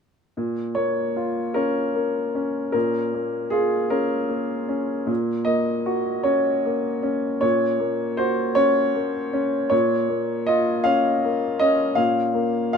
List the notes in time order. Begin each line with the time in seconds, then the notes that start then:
0.37 A#2
0.75 A#3 C#5
1.16 F4
1.54 C#4 A#4
1.95 A#3
2.35 C#4
2.72 A#2 A#4
3.14 A#3
3.50 F4 G#4
3.90 C#4 A#4
4.29 A#3
4.69 C#4
5.07 A#2
5.45 A#3 D#5
5.86 F#4
6.23 C#4 C#5
6.65 A#3
7.03 C#4
7.41 A#2 C#5
7.79 A#3
8.17 F#4 C5
8.55 C#4 C#5
8.95 A#3
9.33 C#4
9.70 A#2 C#5
10.09 A#3
10.46 F4 D#5
10.84 C#4 F5
11.24 A#3
11.59 C#4 D#5
11.95 A#2 F5
12.34 A#3
12.73 F5